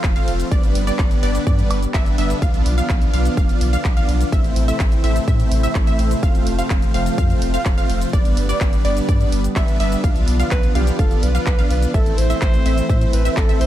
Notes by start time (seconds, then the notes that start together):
Already playing: F3 A3 C4 F4 C5 F5
0.04 F1, kick, clap, closed hi-hat, cabasa
0.16 A3 C4 F4 C5 F5, closed hi-hat, cabasa
0.28 F1, open hi-hat
0.40 closed hi-hat, cabasa
0.51 G1 D3 G3 B3 D5, kick, closed hi-hat, cabasa
0.63 G1, closed hi-hat, cabasa
0.75 G1, open hi-hat
0.87 G3 B3 D4 B4 D5, closed hi-hat, cabasa
0.99 G1, kick, clap, closed hi-hat, cabasa
1.11 closed hi-hat, cabasa
1.23 G1 G3 B3 D4 B4 D5, open hi-hat
1.35 closed hi-hat, cabasa
1.47 G2 G3 B3 D4 B4 D5, kick, closed hi-hat, cabasa
1.59 closed hi-hat, cabasa
1.71 G1, open hi-hat, high woodblock
1.82 closed hi-hat, cabasa
1.94 G1 G3 B3 D4 B4 E5, kick, clap, closed hi-hat, cabasa
2.06 closed hi-hat, cabasa
2.18 G1 G3 B3 D4 B4 E5, open hi-hat
2.30 closed hi-hat, cabasa
2.42 B1 F3 B3 D4 F4 D5 F5, kick, closed hi-hat, cabasa
2.54 B1, closed hi-hat, cabasa
2.66 B1, open hi-hat
2.78 B3 D4 F4 D5 F5, closed hi-hat, cabasa
2.89 B1, kick, clap, closed hi-hat, cabasa
3.02 closed hi-hat, cabasa
3.13 B1 B3 D4 F4 D5 F5, open hi-hat
3.25 closed hi-hat, cabasa
3.37 F1 F5, kick, closed hi-hat, cabasa
3.49 closed hi-hat, cabasa
3.61 B1, open hi-hat
3.73 B3 D4 F4 D5 F5, closed hi-hat, cabasa
3.85 B1, kick, clap, closed hi-hat, cabasa
3.97 B3 D4 F4 D5 F5, closed hi-hat, cabasa
4.09 B1, open hi-hat
4.21 closed hi-hat, cabasa
4.32 A1 C3 E3 A3 C4 E4 C5 E5, kick, closed hi-hat, cabasa
4.44 A1, closed hi-hat, cabasa
4.56 A1, open hi-hat
4.68 A3 C4 E4 C5 E5, closed hi-hat, cabasa
4.80 A1, kick, clap, closed hi-hat, cabasa
4.92 closed hi-hat, cabasa
5.04 A1 A3 C4 E4 C5 E5, open hi-hat
5.16 closed hi-hat, cabasa
5.28 A2 E4 E5, kick, closed hi-hat, cabasa
5.40 closed hi-hat, cabasa
5.51 A1, open hi-hat
5.63 A3 C4 E4 C5 E5, closed hi-hat, cabasa
5.75 A1, kick, clap, closed hi-hat, cabasa
5.87 A3 C4 E4 C5 E5, closed hi-hat, cabasa
5.99 A1, open hi-hat
6.11 closed hi-hat, cabasa
6.23 F1 C3 F3 C4 F5, kick, closed hi-hat, cabasa
6.35 F1, closed hi-hat, cabasa
6.47 F1, open hi-hat
6.59 A3 C4 F4 C5 F5, closed hi-hat, cabasa
6.70 F1, kick, clap, closed hi-hat, cabasa
6.82 closed hi-hat, cabasa
6.94 F1 A3 C4 F4 C5 F5, open hi-hat
7.06 closed hi-hat, cabasa
7.18 F2 C4 F4 C5 F5, kick, closed hi-hat, cabasa
7.30 closed hi-hat, cabasa
7.42 F1, open hi-hat
7.54 A3 C4 F4 C5 F5, closed hi-hat, cabasa
7.65 F1, kick, clap, closed hi-hat, cabasa
7.78 A3 C4 F4 C5 F5, closed hi-hat, cabasa
7.90 F1, open hi-hat
8.01 closed hi-hat, cabasa
8.13 G1 D3 G3 B3 D4 D5, kick, closed hi-hat, cabasa
8.25 G1, closed hi-hat, cabasa
8.37 G1, open hi-hat
8.49 G3 B3 D4 B4 D5, closed hi-hat, cabasa
8.61 G1, kick, clap, closed hi-hat, cabasa
8.73 closed hi-hat, cabasa
8.85 G1 G3 B3 D4 B4 D5, open hi-hat
8.97 closed hi-hat, cabasa
9.09 G2 D5, kick, closed hi-hat, cabasa
9.21 closed hi-hat, cabasa
9.32 G1, open hi-hat
9.44 closed hi-hat, cabasa
9.56 G1 G3 B3 D4 B4 E5, kick, clap, closed hi-hat, cabasa
9.68 closed hi-hat, cabasa
9.80 G1 G3 B3 D4 B4 E5, open hi-hat
9.92 closed hi-hat, cabasa
10.04 B1 F3 B3 F5, kick, closed hi-hat, cabasa
10.16 B1, closed hi-hat, cabasa
10.28 B1, open hi-hat
10.40 B3 D4 F4 D5 F5, closed hi-hat, cabasa
10.51 B1 B4, kick, clap, closed hi-hat, cabasa
10.63 closed hi-hat, cabasa
10.75 B1 B3 D4 F4 G4 D5 F5, open hi-hat
10.87 closed hi-hat, cabasa
10.99 F1 B3 A4 F5, kick, closed hi-hat, cabasa
11.11 closed hi-hat, cabasa
11.23 B1 B4, open hi-hat
11.35 B3 D4 F4 D5 F5, closed hi-hat, cabasa
11.46 B1, kick, clap, closed hi-hat, cabasa
11.59 B3 D4 F4 D5 F5, closed hi-hat, cabasa
11.71 B1 B4, open hi-hat
11.82 closed hi-hat, cabasa
11.94 A1 E3 A3 C4 E4 A4 C5 E5, kick, closed hi-hat, cabasa
12.06 A1, closed hi-hat, cabasa
12.18 A1 C5, open hi-hat
12.30 A3 C4 E4 C5 E5, closed hi-hat, cabasa
12.42 A1, kick, clap, closed hi-hat, cabasa
12.54 closed hi-hat, cabasa
12.66 A1 A3 C4 E4 C5 E5, open hi-hat
12.78 closed hi-hat, cabasa
12.90 A2 A3 E4 E5, kick, closed hi-hat, cabasa
13.02 closed hi-hat, cabasa
13.13 A1 B4, open hi-hat
13.25 A3 C4 E4 C5 E5, closed hi-hat, cabasa
13.37 A1 A4, kick, clap, closed hi-hat, cabasa
13.49 A3 C4 E4 C5 E5, closed hi-hat, cabasa
13.61 A1 C5, open hi-hat